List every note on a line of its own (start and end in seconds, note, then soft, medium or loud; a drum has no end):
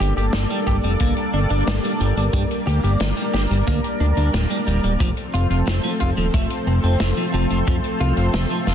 0.00 0.13 G1 medium
0.00 4.96 G3 medium
0.00 4.96 A#3 medium
0.00 4.96 D4 medium
0.00 0.13 G4 medium
0.00 2.31 A4 medium
0.00 4.96 D5 medium
0.00 closed hi-hat medium
0.17 0.30 G1 medium
0.17 0.25 G4 medium
0.17 closed hi-hat soft
0.33 0.46 G1 loud
0.33 0.42 G3 medium
0.33 snare loud
0.33 closed hi-hat medium
0.50 0.59 G3 medium
0.50 closed hi-hat medium
0.67 0.80 G1 medium
0.67 0.75 G4 loud
0.67 kick medium
0.67 closed hi-hat medium
0.84 0.97 F1 medium
0.84 0.92 G3 medium
0.84 closed hi-hat medium
1.00 1.13 G1 loud
1.00 1.13 A#3 medium
1.00 kick loud
1.00 closed hi-hat loud
1.16 closed hi-hat medium
1.34 1.46 G1 medium
1.34 1.39 D4 medium
1.50 1.63 G1 medium
1.50 1.63 D4 medium
1.50 closed hi-hat medium
1.67 1.80 G1 loud
1.67 1.75 G3 medium
1.67 snare loud
1.67 closed hi-hat medium
1.84 1.92 G3 medium
1.84 closed hi-hat medium
2.00 2.13 G1 medium
2.00 2.13 G3 medium
2.00 closed hi-hat medium
2.17 2.30 G1 medium
2.17 2.25 G3 medium
2.17 closed hi-hat medium
2.33 2.46 G2 loud
2.33 2.42 G3 medium
2.33 4.98 A#4 medium
2.33 kick loud
2.33 closed hi-hat medium
2.51 closed hi-hat medium
2.67 2.80 D2 loud
2.67 2.80 G4 medium
2.67 closed hi-hat medium
2.84 2.97 G1 medium
2.84 2.92 G4 medium
2.84 closed hi-hat soft
3.00 3.13 G1 loud
3.00 3.09 G3 medium
3.00 snare loud
3.00 closed hi-hat medium
3.17 3.25 G3 medium
3.17 closed hi-hat medium
3.34 3.47 G1 medium
3.34 3.42 G4 loud
3.34 snare medium
3.34 closed hi-hat medium
3.50 3.63 G1 medium
3.50 3.59 G3 medium
3.50 closed hi-hat medium
3.67 3.80 D2 loud
3.67 3.79 A#3 medium
3.67 kick loud
3.67 closed hi-hat loud
3.84 closed hi-hat medium
4.00 4.13 D2 medium
4.00 4.05 D4 medium
4.17 4.30 D2 medium
4.17 4.30 D4 medium
4.17 closed hi-hat medium
4.34 4.47 D1 loud
4.34 4.42 G3 medium
4.34 snare loud
4.34 closed hi-hat loud
4.50 4.59 G3 medium
4.50 closed hi-hat medium
4.67 4.80 D1 medium
4.67 4.79 G3 medium
4.67 closed hi-hat medium
4.84 4.97 D1 medium
4.84 4.92 G3 medium
4.84 closed hi-hat medium
5.00 5.13 F1 loud
5.00 8.75 F3 medium
5.00 5.09 F3 medium
5.00 8.75 A3 medium
5.00 8.75 C4 medium
5.00 8.75 A4 medium
5.00 8.75 C5 medium
5.00 kick loud
5.00 closed hi-hat medium
5.17 closed hi-hat medium
5.34 5.47 F1 loud
5.34 5.46 F4 medium
5.34 closed hi-hat medium
5.50 5.63 F1 medium
5.50 5.59 F4 medium
5.50 closed hi-hat medium
5.67 5.80 F1 loud
5.67 5.75 F3 medium
5.67 snare loud
5.67 closed hi-hat medium
5.84 5.92 F3 medium
5.84 closed hi-hat medium
6.00 6.13 F1 medium
6.00 6.09 F4 loud
6.00 kick medium
6.00 closed hi-hat medium
6.17 6.30 D#1 medium
6.17 6.25 F3 medium
6.17 closed hi-hat medium
6.34 6.47 F1 loud
6.34 6.46 A3 medium
6.34 kick loud
6.34 closed hi-hat medium
6.50 closed hi-hat medium
6.67 6.80 F1 medium
6.67 6.72 C4 medium
6.84 6.97 F1 medium
6.84 6.96 C4 medium
6.84 closed hi-hat soft
7.00 7.13 F1 loud
7.00 7.09 F3 medium
7.00 snare loud
7.00 closed hi-hat loud
7.17 7.25 F3 medium
7.17 closed hi-hat medium
7.34 7.47 F1 medium
7.34 7.46 F3 medium
7.34 closed hi-hat medium
7.50 7.63 F1 medium
7.50 7.59 F3 medium
7.50 closed hi-hat medium
7.67 7.80 F2 loud
7.67 7.75 F3 medium
7.67 kick loud
7.67 closed hi-hat medium
7.84 closed hi-hat soft
8.00 8.13 C2 medium
8.00 8.13 F4 medium
8.00 closed hi-hat medium
8.17 8.30 F1 medium
8.17 8.25 F4 medium
8.17 closed hi-hat soft
8.33 8.46 F1 loud
8.33 8.42 F3 medium
8.33 snare loud
8.33 closed hi-hat medium
8.50 8.59 F3 medium
8.50 closed hi-hat soft
8.67 8.75 F1 medium
8.67 8.75 F4 loud
8.67 snare medium
8.67 closed hi-hat medium